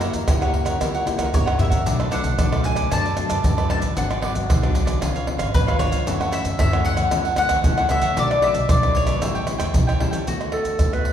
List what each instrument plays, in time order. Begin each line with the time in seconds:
Already playing: nylon-string guitar F#3, mandolin A#4
0.00 nylon-string guitar A#3 E4 G4, cavaquinho E4 A#4 C#5 F#5, pandeiro, tamborim, maracas
0.13 upright bass F#2, muted cavaquinho stroke, pandeiro, maracas, surdo
0.28 upright bass F#2, nylon-string guitar C#3 A#3 E4 G4, cavaquinho E4 A#4 C#5 F#5, pandeiro, tamborim, maracas, surdo
0.41 nylon-string guitar A#3 E4 G4, cavaquinho A#4 C#5 F#5, pandeiro, tamborim, maracas
0.54 pandeiro
0.65 cavaquinho A#4 C#5 F#5, pandeiro, tamborim, maracas, surdo
0.80 upright bass C#2, nylon-string guitar F#3 A#3 E4 G4, cavaquinho E4 A#4 C#5 F#5, pandeiro, tamborim, maracas, surdo
0.94 cavaquinho A#4 C#5 F#5, pandeiro, maracas
1.06 nylon-string guitar A#3 E4 G4, muted cavaquinho stroke, pandeiro, tamborim, maracas, surdo
1.17 upright bass C#2, cavaquinho A#4 C#5 F#5, pandeiro, tamborim, maracas, surdo
1.33 upright bass G1, nylon-string guitar C#3 A#3 E4 G4, mandolin C#5, pandeiro, maracas, surdo
1.46 cavaquinho A#4 C#5 F#5, pandeiro, tamborim, maracas
1.58 upright bass A#1, nylon-string guitar A#3 E4 G4, cavaquinho E4 A#4 C#5 F#5, mandolin E5, surdo, pandeiro, maracas
1.70 cavaquinho A#4 C#5 F#5, pandeiro, maracas, surdo
1.85 upright bass B1, nylon-string guitar B2 F#3 A3 D4, cavaquinho D4 A4 B4 D5, pandeiro, maracas, surdo
1.99 cavaquinho A4 B4 D5, pandeiro, tamborim, maracas
2.11 nylon-string guitar F#3 A3 D4, cavaquinho D4 A4 B4 D5, mandolin F#5, pandeiro, tamborim, maracas
2.23 upright bass B1, muted cavaquinho stroke, pandeiro, maracas, surdo
2.38 upright bass B1, nylon-string guitar F#2 F#3 A3 D4, cavaquinho D4 A4 B4 D5, pandeiro, tamborim, maracas, surdo
2.52 nylon-string guitar F#3 A3 D4, cavaquinho A4 B4 D5, pandeiro, tamborim, maracas
2.64 mandolin G#5, pandeiro, maracas
2.76 cavaquinho A4 B4 D5, pandeiro, tamborim, maracas, surdo
2.91 upright bass F#2, nylon-string guitar B2 F#3 A3 D4, cavaquinho D4 A4 B4 D5, mandolin A5, pandeiro, tamborim, maracas, surdo
3.04 cavaquinho A4 B4 D5, pandeiro, maracas
3.16 nylon-string guitar F#3 A3 D4, muted cavaquinho stroke, pandeiro, tamborim, maracas, surdo
3.29 upright bass F#2, cavaquinho A4 B4 D5, pandeiro, tamborim, maracas, surdo
3.44 upright bass F#2, nylon-string guitar F#2 F#3 A3 D4, pandeiro, maracas, surdo
3.57 cavaquinho A4 B4 D5, pandeiro, tamborim, maracas
3.69 nylon-string guitar F#3 A3 D4, cavaquinho D4 A4 B4 D5, mandolin A5, pandeiro, tamborim
3.82 upright bass A1, cavaquinho A4 B4 D5, pandeiro, maracas, surdo
3.96 upright bass G#1, nylon-string guitar G#2 F#3 B3 D4, cavaquinho F#4 G#4 B4 D5, mandolin F#5, pandeiro, maracas, surdo
4.10 cavaquinho G#4 B4 D5, pandeiro, tamborim, maracas
4.22 nylon-string guitar F#3 B3 D4, cavaquinho F#4 G#4 B4 D5, pandeiro, tamborim
4.34 upright bass G#1, muted cavaquinho stroke, pandeiro, maracas, surdo
4.49 upright bass B1, cavaquinho F#4 G#4 B4 D5, pandeiro, tamborim, maracas, surdo
4.63 nylon-string guitar F#3 B3 D4, cavaquinho G#4 B4 D5, pandeiro, tamborim, maracas
4.75 pandeiro, maracas
4.86 cavaquinho G#4 B4 D5, pandeiro, tamborim, maracas, surdo
5.01 upright bass C#2, nylon-string guitar C#3 F3 B3 D4, cavaquinho F4 B4 C#5 F5, pandeiro, tamborim, maracas, surdo
5.15 cavaquinho B4 C#5 F5, pandeiro, maracas
5.27 nylon-string guitar F3 B3 D4, muted cavaquinho stroke, pandeiro, tamborim, surdo
5.38 upright bass G#1, cavaquinho B4 C#5 F5, pandeiro, tamborim, maracas, surdo
5.54 upright bass G#1, nylon-string guitar G#2, mandolin B4, pandeiro, maracas, surdo
5.67 cavaquinho B4 C#5 F5, pandeiro, tamborim, maracas
5.79 nylon-string guitar F3 B3 D4, cavaquinho F4 B4 C#5 F5, mandolin C#5, pandeiro, tamborim, maracas
5.92 upright bass C#2, cavaquinho B4 C#5 F5, pandeiro, maracas, surdo
6.06 nylon-string guitar F#2 E3 A3 C#4, upright bass F#2, cavaquinho E4 A4 C#5 F#5, pandeiro, maracas, surdo
6.20 cavaquinho A4 C#5 F#5, pandeiro, tamborim, maracas
6.32 nylon-string guitar E3 A3 C#4, cavaquinho E4 A4 C#5 F#5, mandolin E5, pandeiro, tamborim, maracas
6.44 upright bass F#2, muted cavaquinho stroke, pandeiro, maracas, surdo
6.58 upright bass F#2, nylon-string guitar C#3 E3 A3 C#4, cavaquinho E4 A4 C#5 F#5, mandolin E5, pandeiro, tamborim, maracas, surdo
6.72 nylon-string guitar E3 A3 C#4, cavaquinho A4 C#5 F#5, pandeiro, tamborim, maracas
6.85 mandolin F#5, pandeiro
6.96 cavaquinho A4 C#5 F#5, pandeiro, tamborim, maracas, surdo
7.11 upright bass C#2, nylon-string guitar F#2 E3 A3 C#4, cavaquinho E4 A4 C#5 F#5, pandeiro, tamborim, maracas, surdo
7.25 cavaquinho A4 C#5 F#5, pandeiro, maracas
7.36 nylon-string guitar E3 A3 C#4, mandolin F#5, muted cavaquinho stroke, pandeiro, tamborim, maracas, surdo
7.49 upright bass C#2, cavaquinho A4 C#5 F#5, pandeiro, tamborim, maracas, surdo
7.64 upright bass C#2, nylon-string guitar C#3 E3 A3 C#4, pandeiro, maracas, surdo
7.77 cavaquinho A4 C#5 F#5, pandeiro, tamborim, maracas
7.89 nylon-string guitar E3 A3 C#4, cavaquinho E4 A4 C#5 F#5, mandolin E5, pandeiro, tamborim, maracas
8.01 upright bass F#2, cavaquinho A4 C#5 F#5, pandeiro, maracas, surdo
8.16 upright bass B1, nylon-string guitar B2 F#3 A3 D4, cavaquinho D4 A4 B4 D5, mandolin D5, pandeiro, maracas, surdo
8.30 cavaquinho A4 B4 D5, pandeiro, tamborim, maracas
8.42 nylon-string guitar F#3 A3 D4, cavaquinho D4 A4 B4 D5, mandolin E5, pandeiro, tamborim
8.54 upright bass B1, muted cavaquinho stroke, pandeiro, maracas, surdo
8.69 upright bass B1, nylon-string guitar F#2 F#3 A3 D4, cavaquinho D4 A4 B4 D5, mandolin D5, pandeiro, tamborim, maracas, surdo
8.82 nylon-string guitar F#3 A3 D4, cavaquinho A4 B4 D5, pandeiro, tamborim, maracas
8.95 mandolin C#5, pandeiro
9.06 cavaquinho A4 B4 D5, pandeiro, tamborim, maracas, surdo
9.21 upright bass A1, nylon-string guitar A2 G3 C#4 E4, cavaquinho E4 A4 C#5 G5, pandeiro, tamborim, maracas, surdo
9.35 cavaquinho A4 C#5 G5, pandeiro, maracas
9.46 nylon-string guitar G3 C#4 E4, muted cavaquinho stroke, pandeiro, tamborim, maracas
9.58 upright bass E2, cavaquinho A4 C#5 G5, pandeiro, tamborim, maracas, surdo
9.74 upright bass B1, nylon-string guitar E3 G3 C#4 E4, pandeiro, maracas, surdo
9.87 cavaquinho A4 C#5 G5, pandeiro, tamborim, maracas
9.99 upright bass C#2, nylon-string guitar G3 C#4 E4, cavaquinho E4 A4 C#5 G5, pandeiro, tamborim
10.11 cavaquinho A4 C#5 G5, pandeiro, maracas, surdo
10.27 upright bass D2, nylon-string guitar D3 A3 B3 F#4, mandolin F#4, pandeiro, maracas, surdo
10.41 pandeiro, tamborim, maracas
10.52 nylon-string guitar A3 B3 F#4, clarinet A4, pandeiro, tamborim
10.65 pandeiro, maracas, surdo
10.79 nylon-string guitar A2, upright bass D3, pandeiro, tamborim, maracas, surdo
10.93 nylon-string guitar A3 B3 F#4, clarinet B4, pandeiro, tamborim, maracas
11.05 pandeiro